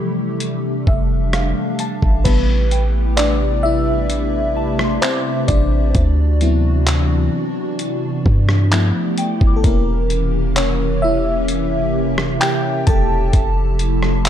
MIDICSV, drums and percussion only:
0, 0, Header, 1, 2, 480
1, 0, Start_track
1, 0, Key_signature, 0, "minor"
1, 0, Tempo, 923077
1, 1174, Time_signature, 4, 2, 24, 8
1, 7433, End_track
2, 0, Start_track
2, 0, Title_t, "Drums"
2, 210, Note_on_c, 9, 42, 63
2, 262, Note_off_c, 9, 42, 0
2, 453, Note_on_c, 9, 36, 101
2, 505, Note_off_c, 9, 36, 0
2, 693, Note_on_c, 9, 37, 110
2, 693, Note_on_c, 9, 42, 59
2, 745, Note_off_c, 9, 37, 0
2, 745, Note_off_c, 9, 42, 0
2, 930, Note_on_c, 9, 42, 70
2, 982, Note_off_c, 9, 42, 0
2, 1053, Note_on_c, 9, 36, 93
2, 1105, Note_off_c, 9, 36, 0
2, 1171, Note_on_c, 9, 42, 77
2, 1172, Note_on_c, 9, 49, 92
2, 1173, Note_on_c, 9, 36, 106
2, 1223, Note_off_c, 9, 42, 0
2, 1224, Note_off_c, 9, 49, 0
2, 1225, Note_off_c, 9, 36, 0
2, 1411, Note_on_c, 9, 42, 59
2, 1463, Note_off_c, 9, 42, 0
2, 1653, Note_on_c, 9, 39, 127
2, 1654, Note_on_c, 9, 42, 82
2, 1705, Note_off_c, 9, 39, 0
2, 1706, Note_off_c, 9, 42, 0
2, 2130, Note_on_c, 9, 42, 64
2, 2182, Note_off_c, 9, 42, 0
2, 2492, Note_on_c, 9, 37, 93
2, 2544, Note_off_c, 9, 37, 0
2, 2613, Note_on_c, 9, 42, 66
2, 2614, Note_on_c, 9, 39, 118
2, 2665, Note_off_c, 9, 42, 0
2, 2666, Note_off_c, 9, 39, 0
2, 2851, Note_on_c, 9, 42, 75
2, 2853, Note_on_c, 9, 36, 102
2, 2903, Note_off_c, 9, 42, 0
2, 2905, Note_off_c, 9, 36, 0
2, 3092, Note_on_c, 9, 42, 76
2, 3093, Note_on_c, 9, 36, 106
2, 3144, Note_off_c, 9, 42, 0
2, 3145, Note_off_c, 9, 36, 0
2, 3333, Note_on_c, 9, 42, 55
2, 3385, Note_off_c, 9, 42, 0
2, 3573, Note_on_c, 9, 39, 122
2, 3574, Note_on_c, 9, 42, 80
2, 3625, Note_off_c, 9, 39, 0
2, 3626, Note_off_c, 9, 42, 0
2, 4051, Note_on_c, 9, 42, 67
2, 4103, Note_off_c, 9, 42, 0
2, 4294, Note_on_c, 9, 36, 102
2, 4346, Note_off_c, 9, 36, 0
2, 4413, Note_on_c, 9, 37, 100
2, 4465, Note_off_c, 9, 37, 0
2, 4534, Note_on_c, 9, 42, 63
2, 4535, Note_on_c, 9, 39, 119
2, 4586, Note_off_c, 9, 42, 0
2, 4587, Note_off_c, 9, 39, 0
2, 4771, Note_on_c, 9, 42, 77
2, 4823, Note_off_c, 9, 42, 0
2, 4894, Note_on_c, 9, 36, 103
2, 4946, Note_off_c, 9, 36, 0
2, 5013, Note_on_c, 9, 42, 76
2, 5014, Note_on_c, 9, 36, 109
2, 5065, Note_off_c, 9, 42, 0
2, 5066, Note_off_c, 9, 36, 0
2, 5253, Note_on_c, 9, 42, 55
2, 5305, Note_off_c, 9, 42, 0
2, 5494, Note_on_c, 9, 39, 123
2, 5495, Note_on_c, 9, 42, 83
2, 5546, Note_off_c, 9, 39, 0
2, 5547, Note_off_c, 9, 42, 0
2, 5972, Note_on_c, 9, 42, 64
2, 6024, Note_off_c, 9, 42, 0
2, 6333, Note_on_c, 9, 37, 100
2, 6385, Note_off_c, 9, 37, 0
2, 6454, Note_on_c, 9, 42, 67
2, 6455, Note_on_c, 9, 39, 126
2, 6506, Note_off_c, 9, 42, 0
2, 6507, Note_off_c, 9, 39, 0
2, 6692, Note_on_c, 9, 42, 76
2, 6694, Note_on_c, 9, 36, 99
2, 6744, Note_off_c, 9, 42, 0
2, 6746, Note_off_c, 9, 36, 0
2, 6933, Note_on_c, 9, 42, 80
2, 6934, Note_on_c, 9, 36, 109
2, 6985, Note_off_c, 9, 42, 0
2, 6986, Note_off_c, 9, 36, 0
2, 7172, Note_on_c, 9, 42, 59
2, 7224, Note_off_c, 9, 42, 0
2, 7293, Note_on_c, 9, 37, 73
2, 7345, Note_off_c, 9, 37, 0
2, 7413, Note_on_c, 9, 39, 121
2, 7414, Note_on_c, 9, 42, 77
2, 7433, Note_off_c, 9, 39, 0
2, 7433, Note_off_c, 9, 42, 0
2, 7433, End_track
0, 0, End_of_file